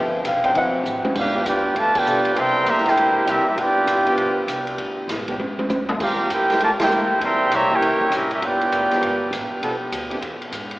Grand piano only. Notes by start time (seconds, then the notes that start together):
Already playing: F3 A3 B3 G5
0.27 F5
0.45 G5
0.55 E3 F#3 C4 F#5